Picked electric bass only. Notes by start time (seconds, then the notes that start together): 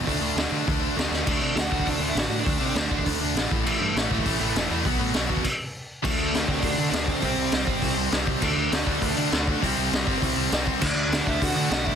0.07 D2
0.20 D2
0.35 D2
0.52 D3
0.68 D2
0.96 D2
1.11 D2
1.28 D2
1.39 C3
1.56 D2
1.73 D2
1.87 D2
1.99 D2
2.15 A1
2.29 A2
2.46 D2
2.60 C3
2.75 D2
2.91 D2
3.07 D2
3.20 D2
3.34 A1
3.51 A1
3.66 A1
3.79 G2
3.95 A1
4.11 A1
4.25 A1
4.40 A1
4.55 E1
4.70 E2
4.85 B1
4.99 A2
5.15 B1
5.30 D#2
6.04 D2
6.17 D2
6.33 D2
6.49 D2
6.63 D2
6.78 D3
6.92 D2
7.23 C2
7.37 C2
7.52 C2
7.67 G1
7.82 C2
7.96 C2
8.12 C2
8.42 D2
8.57 D2
8.72 D2
8.87 D2
9.02 D2
9.18 D3
9.32 D2
9.63 C2
9.78 C2
9.92 C2
10.07 G1
10.23 C2
10.37 C2
10.52 C2
10.82 D2
10.95 D2
11.08 D2
11.27 D2
11.43 D2
11.56 D3
11.71 B1